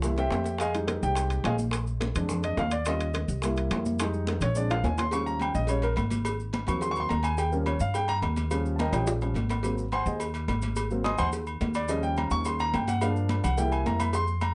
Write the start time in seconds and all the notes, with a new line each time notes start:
Already playing: C2
0.02 G3 A#3 E4, high bongo, high conga, low conga, maracas
0.16 G4 C5 E5 G5, high bongo, low timbale, maracas
0.31 F2, high bongo, low bongo, high conga, low timbale, maracas
0.44 high bongo, low timbale, maracas
0.58 G#4 D#5 F5 G#5, high bongo, high timbale, maracas
0.74 G3 G#3 D#4, high conga, high timbale, maracas
0.88 high bongo, high conga, high timbale, low timbale, maracas
1.03 C2 G4 G5, high conga, maracas
1.15 high bongo, high conga, high timbale, maracas
1.30 high conga, high timbale, maracas
1.44 A#1 G#4 D#5 F5 G#5, high bongo, low bongo, high conga, high timbale, low timbale, maracas
1.59 high conga, maracas
1.71 high bongo, high conga, high timbale, maracas
1.87 high conga, maracas
2.01 high bongo, high conga, high timbale, low timbale, maracas
2.15 F2 G#3 C4 D4, high bongo, high conga, low conga, high timbale, maracas
2.29 high bongo, high conga, low conga, maracas
2.43 D#5, high bongo, high timbale, maracas
2.57 D#2 F5, high bongo, low bongo, high conga, low timbale, maracas
2.71 D5, high bongo, high timbale, maracas
2.85 G3 C#4 F4 D#5, high bongo, high conga, high timbale, maracas
3.00 high conga, high timbale, maracas
3.14 high bongo, high conga, high timbale, low timbale, maracas
3.28 C2, high conga, maracas
3.42 G3 A#3 E4, high bongo, high conga, high timbale, maracas
3.57 high conga, high timbale, maracas
3.71 F2, high bongo, low bongo, high conga, high timbale, low timbale, maracas
3.85 high conga, maracas
3.99 G3 G#3 D#4, high bongo, high conga, high timbale, maracas
4.14 high conga, maracas
4.27 high bongo, high conga, high timbale, low timbale, maracas
4.41 A#1 C#5, high bongo, high conga, low conga, high timbale, maracas
4.55 G#3 C4 D4 D5, high conga, maracas
4.70 F5, low bongo, high conga, high timbale, maracas
4.84 D#2 G#5, low bongo, high conga, low timbale, maracas
4.98 C6, low bongo, high conga, high timbale, maracas
5.11 F3 G3 C#4 C#6, cowbell, high conga, low agogo, maracas
5.26 A#5, high conga, maracas
5.40 G5, cowbell, high conga, low timbale, low agogo, maracas
5.55 A#1 D#5, high conga, maracas
5.67 F3 G3 C#4 C#5, cowbell, high conga, low agogo, maracas
5.82 A#4, cowbell, high conga, low agogo, maracas
5.96 G#1, cowbell, high conga, low timbale, low agogo, maracas
6.10 cowbell, high conga, low agogo, maracas
6.25 cowbell, high conga, low agogo, maracas
6.40 high conga, maracas
6.53 cowbell, high conga, low timbale, low agogo, maracas
6.67 D#2 F#3 A#3 C4 C#6, cowbell, high conga, low conga, low agogo, maracas
6.81 C6, cowbell, high conga, maracas
6.91 C#6
6.96 high conga, low agogo, maracas
7.00 C6
7.09 D#2 A#5, cowbell, high conga, low timbale, low agogo, maracas
7.23 G#5, cowbell, low agogo, maracas
7.38 G5, cowbell, low agogo, maracas
7.52 F3 G3 C#4 A#4, high conga, maracas
7.66 C#5, cowbell, high conga, low timbale, low agogo, maracas
7.80 G2 F5, high conga, maracas
7.94 G5, cowbell, high conga, low agogo, maracas
8.08 A#5, cowbell, high conga, low agogo, maracas
8.22 D#2, cowbell, high conga, low timbale, low agogo, maracas
8.36 cowbell, high conga, low agogo, maracas
8.51 F3 G3 C#4, cowbell, high conga, low agogo, maracas
8.66 high conga, maracas
8.76 A5, cowbell, high conga, low timbale, low agogo, maracas
8.80 A#4 D#5 G5 A#5
8.93 A#1 G4 C#5 D#5 G5, cowbell, high conga, low conga, high timbale, low agogo, maracas
9.07 cowbell, high timbale, maracas
9.21 F3 G3 C#4, high conga, high timbale, low agogo, maracas
9.34 G#1, cowbell, high conga, low timbale, low agogo, maracas
9.49 cowbell, high conga, low timbale, low agogo, maracas
9.63 F#3 A#3 C4, cowbell, high conga, low agogo, maracas
9.78 high conga, maracas
9.92 C5 F#5 G#5 C6, cowbell, high conga, low timbale, low agogo, maracas
10.06 D#2 G#4 C5 D#5 G#5, maracas
10.20 cowbell, high conga, low agogo, maracas
10.34 cowbell, high conga, low agogo, maracas
10.48 G#1, cowbell, high conga, low timbale, low agogo, maracas
10.62 cowbell, high conga, low agogo, maracas
10.76 cowbell, high conga, low agogo, maracas
10.91 F#3 A#3 C4, high conga, maracas
11.04 D#5 G#5 C6 D#6, cowbell, high conga, low timbale, low agogo, maracas
11.18 D#2 C5 F#5 G#5 C6, cowbell, high conga, low conga, low agogo, maracas
11.32 cowbell, high conga, maracas
11.47 high conga, low agogo, maracas
11.61 D#2, cowbell, high conga, low timbale, low agogo, maracas
11.74 D5, cowbell, low agogo, maracas
11.88 F3 G3 C#4 D#5, cowbell, high conga, low agogo, maracas
12.03 G5, high conga, maracas
12.17 A#5, cowbell, high conga, low timbale, low agogo, maracas
12.31 D#2 C#6, high conga, maracas
12.45 C6, cowbell, high conga, low agogo, maracas
12.59 A#5, cowbell, high conga, low agogo, maracas
12.73 G2 G5, cowbell, high conga, low timbale, low agogo, maracas
12.87 F#5, cowbell, high conga, low agogo, maracas
13.01 F3 A#3 D4 F5, cowbell, high conga, low agogo, maracas
13.16 high conga, maracas
13.29 cowbell, high conga, low timbale, low agogo, maracas
13.44 C2 F#5, cowbell, high conga, low conga, low agogo, maracas
13.57 G3 A#3 E4 G5, cowbell, high conga, low conga, maracas
13.72 G#5, low agogo, maracas
13.86 F2 A#5, cowbell, high conga, low timbale, low agogo, maracas
14.00 B5, cowbell, high conga, low agogo, maracas
14.13 C6, cowbell, low agogo, maracas
14.27 high conga, maracas
14.41 A#5, cowbell, high conga, low timbale, low agogo, maracas